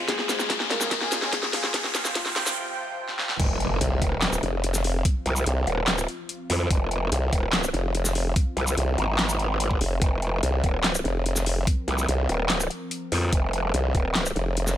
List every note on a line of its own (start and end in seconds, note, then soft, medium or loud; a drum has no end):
0.00 1.70 G#3 medium
0.00 riser medium
0.08 1.72 C#2 medium
0.08 1.72 C#3 medium
0.08 3.36 F4 medium
0.08 0.62 G#4 medium
0.08 1.72 G#4 medium
0.08 kick loud
0.08 snare loud
0.08 closed hi-hat medium
0.19 snare medium
0.29 snare medium
0.29 closed hi-hat medium
0.29 shaker medium
0.40 snare medium
0.40 shaker soft
0.50 kick loud
0.50 snare medium
0.50 closed hi-hat medium
0.60 snare medium
0.71 1.24 A#4 medium
0.71 snare medium
0.71 closed hi-hat medium
0.81 snare medium
0.81 shaker medium
0.91 kick loud
0.91 snare medium
0.91 closed hi-hat medium
1.02 snare medium
1.12 snare loud
1.12 closed hi-hat medium
1.12 shaker medium
1.22 snare medium
1.33 2.07 G#4 medium
1.33 kick loud
1.33 snare loud
1.33 closed hi-hat medium
1.43 snare medium
1.53 snare loud
1.53 open hi-hat medium
1.64 snare medium
1.74 3.38 C2 medium
1.74 3.38 C3 medium
1.74 3.38 F3 medium
1.74 3.38 G5 medium
1.74 kick loud
1.74 snare loud
1.74 closed hi-hat medium
1.84 snare medium
1.95 snare loud
1.95 closed hi-hat medium
1.95 shaker soft
2.05 snare medium
2.05 shaker medium
2.15 2.57 F4 medium
2.15 kick loud
2.15 snare loud
2.15 closed hi-hat medium
2.26 snare medium
2.36 snare loud
2.36 closed hi-hat medium
2.46 snare medium
2.46 shaker medium
3.09 snare medium
3.19 snare medium
3.29 snare medium
3.40 3.79 F1 loud
3.40 14.77 F3 medium
3.40 14.77 C4 medium
3.40 10.00 F4 medium
3.40 kick loud
3.40 closed hi-hat medium
3.40 crash loud
3.40 impact medium
3.60 closed hi-hat medium
3.81 4.00 C2 medium
3.81 closed hi-hat medium
4.02 4.41 D#1 loud
4.02 kick medium
4.02 closed hi-hat medium
4.22 snare loud
4.22 clap medium
4.22 closed hi-hat medium
4.33 shaker medium
4.43 5.03 F1 loud
4.43 closed hi-hat medium
4.64 closed hi-hat medium
4.74 snare soft
4.74 shaker medium
4.84 open hi-hat medium
5.05 kick loud
5.05 closed hi-hat medium
5.26 5.45 C2 loud
5.26 closed hi-hat medium
5.36 shaker medium
5.46 5.66 C2 medium
5.46 closed hi-hat medium
5.67 6.07 D#1 loud
5.67 closed hi-hat medium
5.88 snare loud
5.88 clap medium
5.88 closed hi-hat medium
5.98 shaker medium
6.08 closed hi-hat medium
6.29 closed hi-hat medium
6.50 6.69 F2 loud
6.50 open hi-hat medium
6.71 7.10 F1 medium
6.71 kick loud
6.71 closed hi-hat medium
6.91 closed hi-hat medium
7.12 7.31 C2 loud
7.12 closed hi-hat medium
7.33 7.72 D#1 loud
7.33 kick medium
7.33 closed hi-hat medium
7.53 snare loud
7.53 clap medium
7.53 closed hi-hat medium
7.64 shaker medium
7.74 8.34 F1 loud
7.74 closed hi-hat medium
7.95 closed hi-hat medium
8.05 snare soft
8.05 shaker medium
8.15 open hi-hat medium
8.36 kick loud
8.36 closed hi-hat medium
8.57 8.76 C2 loud
8.57 closed hi-hat medium
8.67 shaker medium
8.77 8.97 C2 medium
8.77 closed hi-hat medium
8.98 9.79 G#1 loud
8.98 closed hi-hat medium
9.19 snare loud
9.19 clap medium
9.19 closed hi-hat medium
9.29 shaker medium
9.39 closed hi-hat soft
9.60 closed hi-hat medium
9.71 kick medium
9.81 10.00 F1 loud
9.81 open hi-hat medium
10.02 10.41 F1 loud
10.02 14.77 A#4 medium
10.02 kick loud
10.02 closed hi-hat medium
10.22 closed hi-hat medium
10.43 10.62 C2 medium
10.43 closed hi-hat medium
10.64 11.03 D#1 medium
10.64 kick medium
10.64 closed hi-hat medium
10.84 snare loud
10.84 clap medium
10.84 closed hi-hat medium
10.95 shaker medium
11.05 11.66 F1 medium
11.05 closed hi-hat soft
11.26 closed hi-hat medium
11.36 snare soft
11.36 shaker medium
11.46 open hi-hat medium
11.67 kick loud
11.67 closed hi-hat medium
11.88 12.07 C2 loud
11.88 closed hi-hat medium
11.98 shaker medium
12.08 12.28 C2 loud
12.08 closed hi-hat medium
12.29 12.69 D#1 loud
12.29 closed hi-hat medium
12.50 snare loud
12.50 clap medium
12.50 closed hi-hat medium
12.60 shaker medium
12.71 closed hi-hat soft
12.91 closed hi-hat medium
13.12 13.31 F2 loud
13.12 open hi-hat medium
13.33 13.72 F1 loud
13.33 kick loud
13.33 closed hi-hat medium
13.53 closed hi-hat medium
13.74 13.93 C2 loud
13.74 closed hi-hat medium
13.95 14.34 D#1 loud
13.95 kick medium
13.95 closed hi-hat medium
14.15 snare loud
14.15 clap medium
14.15 closed hi-hat medium
14.26 shaker medium
14.36 14.77 F1 loud
14.36 closed hi-hat medium
14.57 closed hi-hat medium
14.67 snare soft
14.67 shaker medium